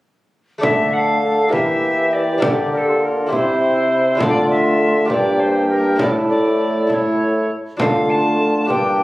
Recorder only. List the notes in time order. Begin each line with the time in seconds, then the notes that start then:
0.62 E5
0.93 F#5
0.98 F5
1.51 E5
2.13 D5
2.73 A#4
2.77 A4
3.03 A#4
3.33 C5
4.19 D5
4.51 E5
5.09 D5
5.40 C5
5.68 A#4
6.00 D5
6.29 D5
6.89 D5
6.94 C#5
7.80 F5
8.10 A5
8.69 G5